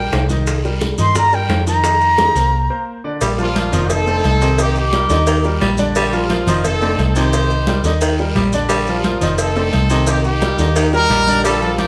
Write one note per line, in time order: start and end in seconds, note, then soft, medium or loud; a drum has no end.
0.00 0.24 G3 medium
0.00 0.24 G4 medium
0.00 0.24 A#4 medium
0.00 0.26 G5 medium
0.12 0.92 C2 medium
0.12 high bongo medium
0.12 low bongo medium
0.12 high conga medium
0.12 short guiro medium
0.12 maracas soft
0.29 0.58 D#3 medium
0.29 0.58 D#4 medium
0.29 0.58 D#5 medium
0.29 high bongo soft
0.29 high conga medium
0.29 short guiro medium
0.29 maracas medium
0.47 high bongo medium
0.47 high conga soft
0.47 long guiro medium
0.47 maracas loud
0.64 0.93 G3 medium
0.64 0.93 G4 medium
0.64 0.93 A#4 medium
0.64 high conga soft
0.64 maracas soft
0.81 high bongo medium
0.81 high conga medium
0.81 short guiro medium
0.81 maracas soft
0.98 1.46 G2 medium
0.98 1.12 D#3 medium
0.98 1.12 D#4 medium
0.98 1.13 D#5 medium
0.98 1.16 C6 medium
0.98 high conga soft
0.98 low conga medium
0.98 short guiro medium
0.98 maracas medium
1.15 1.29 G3 medium
1.15 1.30 G4 medium
1.15 1.30 A#4 medium
1.15 1.36 A#5 loud
1.15 high bongo medium
1.15 high conga soft
1.15 low conga medium
1.15 long guiro medium
1.15 maracas medium
1.33 1.61 G3 medium
1.33 1.61 G4 medium
1.33 1.61 A#4 medium
1.33 1.67 G5 medium
1.33 high conga soft
1.33 maracas soft
1.49 2.30 F2 medium
1.49 high bongo medium
1.49 low bongo medium
1.49 high conga medium
1.49 short guiro medium
1.49 maracas soft
1.67 1.81 D#3 medium
1.67 1.81 D#4 medium
1.67 1.82 D#5 medium
1.67 2.84 A#5 loud
1.67 short guiro medium
1.67 maracas medium
1.84 2.12 D#3 medium
1.84 2.13 D#4 medium
1.84 2.13 D#5 medium
1.84 high bongo medium
1.84 high conga soft
1.84 long guiro medium
1.84 maracas loud
2.01 high bongo soft
2.01 high conga soft
2.01 maracas soft
2.18 2.33 D#3 medium
2.18 2.33 D#4 medium
2.18 2.33 D#5 medium
2.18 high bongo medium
2.18 high conga medium
2.18 short guiro medium
2.18 maracas soft
2.35 2.67 C2 medium
2.35 2.64 A#3 medium
2.35 2.64 A#4 medium
2.35 2.64 C5 medium
2.35 short guiro medium
2.35 maracas medium
2.70 2.98 A#3 medium
2.70 2.98 A#4 medium
2.70 2.98 C5 medium
3.04 3.18 D3 medium
3.04 3.18 D4 medium
3.04 3.19 D5 medium
3.21 3.69 A#1 medium
3.21 3.49 G3 medium
3.21 cowbell loud
3.21 high conga soft
3.21 long guiro medium
3.21 maracas loud
3.38 3.53 F3 medium
3.38 3.87 A#3 medium
3.38 3.88 D4 medium
3.38 3.53 F4 medium
3.38 3.88 F4 medium
3.38 3.53 A#4 medium
3.38 high conga soft
3.38 maracas soft
3.55 3.69 F3 medium
3.55 3.70 F4 medium
3.55 3.70 A#4 medium
3.55 cowbell medium
3.55 high conga medium
3.55 short guiro medium
3.55 maracas soft
3.72 4.21 F1 loud
3.72 4.01 D#3 loud
3.72 3.91 F3 medium
3.72 4.01 D#4 medium
3.72 4.01 D#5 medium
3.72 high conga soft
3.72 low conga medium
3.72 short guiro medium
3.72 maracas medium
3.90 4.55 C4 medium
3.90 4.55 D#4 medium
3.90 4.59 A4 loud
3.90 cowbell loud
3.90 high conga soft
3.90 low conga medium
3.90 long guiro medium
3.90 maracas loud
4.07 4.25 D3 medium
4.07 4.35 A3 medium
4.07 4.35 A4 medium
4.07 4.36 C5 medium
4.07 high conga soft
4.07 maracas soft
4.24 5.04 C2 loud
4.24 cowbell medium
4.24 high conga medium
4.24 short guiro medium
4.24 maracas soft
4.40 4.81 C3 medium
4.40 4.56 D#3 medium
4.40 4.56 D#4 medium
4.40 4.56 D#5 medium
4.40 short guiro medium
4.40 maracas medium
4.58 4.87 D#3 medium
4.58 4.76 A#3 medium
4.58 4.87 D#4 medium
4.58 4.76 D#4 medium
4.58 4.76 G4 medium
4.58 4.87 D#5 medium
4.58 cowbell loud
4.58 high conga soft
4.58 long guiro medium
4.58 maracas loud
4.75 5.76 A#3 medium
4.75 5.76 D#4 medium
4.75 5.76 G4 medium
4.75 high conga soft
4.75 maracas soft
4.93 5.07 G3 medium
4.93 5.07 G4 medium
4.93 5.07 A#4 medium
4.93 cowbell medium
4.93 high conga medium
4.93 short guiro medium
4.93 maracas soft
5.10 5.58 D#2 loud
5.10 5.19 D3 medium
5.10 5.39 D#3 medium
5.10 5.39 D#4 medium
5.10 5.39 D#5 loud
5.10 short guiro medium
5.10 maracas medium
5.27 5.46 D#3 medium
5.27 cowbell loud
5.27 high conga soft
5.27 long guiro medium
5.27 maracas medium
5.44 5.73 G3 medium
5.44 5.73 G4 medium
5.44 5.73 A#4 medium
5.44 high conga soft
5.44 maracas soft
5.61 6.41 A#1 loud
5.61 5.79 G3 medium
5.61 cowbell medium
5.61 high conga medium
5.61 short guiro medium
5.61 maracas soft
5.77 6.07 D3 loud
5.77 6.07 D4 loud
5.77 6.07 D5 medium
5.77 high conga medium
5.77 short guiro medium
5.77 maracas medium
5.95 6.24 G3 loud
5.95 cowbell loud
5.95 high conga soft
5.95 long guiro medium
5.95 maracas loud
6.07 6.14 G4 medium
6.13 6.27 F3 medium
6.13 6.62 A#3 medium
6.13 6.62 D4 medium
6.13 6.27 F4 medium
6.13 6.65 F4 medium
6.13 6.28 A#4 medium
6.13 high conga soft
6.13 maracas soft
6.30 6.44 F3 medium
6.30 6.45 F4 medium
6.30 6.45 A#4 medium
6.30 cowbell medium
6.30 high conga medium
6.30 short guiro medium
6.30 maracas soft
6.47 6.95 F1 medium
6.47 6.76 D#3 medium
6.47 6.66 F3 medium
6.47 6.76 D#4 loud
6.47 6.76 D#5 loud
6.47 high conga soft
6.47 low conga medium
6.47 short guiro medium
6.47 maracas medium
6.64 7.30 C4 medium
6.64 7.16 D#4 medium
6.64 7.13 A4 loud
6.64 cowbell loud
6.64 high conga soft
6.64 low conga medium
6.64 long guiro medium
6.64 maracas loud
6.81 6.99 D3 medium
6.81 7.10 A3 medium
6.81 7.10 A4 medium
6.81 7.10 C5 medium
6.81 high conga soft
6.81 maracas soft
6.98 7.79 C2 loud
6.98 cowbell medium
6.98 high conga medium
6.98 short guiro medium
6.98 maracas soft
7.16 7.56 C3 medium
7.16 7.31 D#3 medium
7.16 7.31 D#4 medium
7.16 7.81 D#4 medium
7.16 7.81 G4 medium
7.16 7.85 C5 loud
7.16 7.31 D#5 medium
7.16 short guiro medium
7.16 maracas medium
7.33 7.62 D#3 medium
7.33 7.62 D#4 medium
7.33 7.62 D#5 medium
7.33 cowbell loud
7.33 long guiro medium
7.33 maracas loud
7.50 high conga soft
7.50 maracas soft
7.67 7.82 G3 medium
7.67 7.82 G4 medium
7.67 7.82 A#4 medium
7.67 cowbell medium
7.67 high conga loud
7.67 short guiro medium
7.67 maracas soft
7.84 8.32 D#2 medium
7.84 7.94 D3 medium
7.84 8.13 D#3 medium
7.84 8.14 D#4 medium
7.84 8.14 D#5 medium
7.84 short guiro medium
7.84 maracas medium
8.01 8.19 D#3 medium
8.01 cowbell loud
8.01 high conga soft
8.01 long guiro medium
8.01 maracas loud
8.18 8.47 G3 medium
8.18 8.48 G4 medium
8.18 8.48 A#4 medium
8.18 high conga soft
8.18 maracas soft
8.35 9.16 A#1 medium
8.35 8.53 G3 medium
8.35 cowbell medium
8.35 high conga medium
8.35 short guiro medium
8.35 maracas soft
8.53 8.82 D3 medium
8.53 8.82 D4 medium
8.53 8.82 D5 medium
8.53 high conga medium
8.53 short guiro medium
8.53 maracas medium
8.69 8.97 G3 loud
8.69 cowbell loud
8.69 high conga soft
8.69 long guiro medium
8.69 maracas loud
8.87 9.02 F3 medium
8.87 9.36 A#3 medium
8.87 9.36 D4 medium
8.87 9.02 F4 medium
8.87 9.36 F4 medium
8.87 9.02 A#4 medium
8.87 high conga soft
8.87 maracas soft
9.04 9.19 F3 medium
9.04 9.19 F4 medium
9.04 9.19 A#4 medium
9.04 cowbell medium
9.04 high conga medium
9.04 short guiro medium
9.04 maracas soft
9.21 9.69 F1 loud
9.21 9.50 D#3 loud
9.21 9.39 F3 medium
9.21 9.50 D#4 medium
9.21 9.50 D#5 loud
9.21 high conga soft
9.21 low conga medium
9.21 short guiro medium
9.21 maracas medium
9.38 10.04 C4 medium
9.38 10.04 D#4 medium
9.38 10.08 A4 loud
9.38 cowbell loud
9.38 high conga soft
9.38 long guiro medium
9.38 maracas loud
9.56 9.74 D3 medium
9.56 9.84 A3 medium
9.56 9.84 A4 medium
9.56 9.84 C5 medium
9.56 high conga soft
9.56 maracas soft
9.73 10.53 C2 loud
9.73 cowbell medium
9.73 high conga medium
9.73 short guiro medium
9.73 maracas soft
9.90 10.30 C3 medium
9.90 10.05 D#3 loud
9.90 10.05 D#4 medium
9.90 10.05 D#5 loud
9.90 short guiro medium
9.90 maracas medium
10.07 10.36 D#3 medium
10.07 10.25 A#3 medium
10.07 10.36 D#4 medium
10.07 10.25 D#4 medium
10.07 10.23 G4 loud
10.07 10.36 D#5 medium
10.07 cowbell loud
10.07 long guiro medium
10.07 maracas loud
10.24 10.90 A#3 medium
10.24 10.90 D#4 medium
10.24 10.89 G4 medium
10.24 high conga soft
10.24 maracas soft
10.41 10.56 G3 medium
10.41 10.56 G4 medium
10.41 10.56 A#4 medium
10.41 cowbell medium
10.41 high conga loud
10.41 short guiro medium
10.41 maracas soft
10.58 11.06 D#2 medium
10.58 10.69 D3 medium
10.58 10.87 D#3 medium
10.58 10.87 D#4 loud
10.58 10.87 D#5 medium
10.58 short guiro medium
10.58 maracas medium
10.76 10.94 D#3 medium
10.76 cowbell loud
10.76 high conga soft
10.76 long guiro medium
10.76 maracas loud
10.93 11.21 G3 medium
10.93 11.42 D#4 medium
10.93 11.21 G4 medium
10.93 11.42 G4 medium
10.93 11.41 A#4 loud
10.93 11.22 A#4 medium
10.93 high conga soft
10.93 maracas soft
11.10 11.87 A#1 loud
11.10 11.28 G3 medium
11.10 cowbell medium
11.10 high conga medium
11.10 short guiro medium
11.10 maracas soft
11.27 11.56 D3 medium
11.27 11.56 D4 loud
11.27 11.56 D5 loud
11.27 high conga medium
11.27 short guiro medium
11.27 maracas medium
11.44 11.73 G3 medium
11.44 11.79 D4 medium
11.44 11.87 F4 medium
11.44 11.76 A4 loud
11.44 cowbell loud
11.44 long guiro medium
11.44 maracas loud
11.62 11.76 F3 medium
11.62 11.76 F4 medium
11.62 11.76 A#4 medium
11.62 high conga soft
11.62 maracas soft
11.78 11.87 F3 medium
11.78 11.87 A#3 medium
11.78 11.87 D4 medium
11.78 11.87 F4 medium
11.78 11.87 G4 loud
11.78 11.87 A#4 medium
11.78 cowbell medium
11.78 high conga medium
11.78 short guiro medium
11.78 maracas soft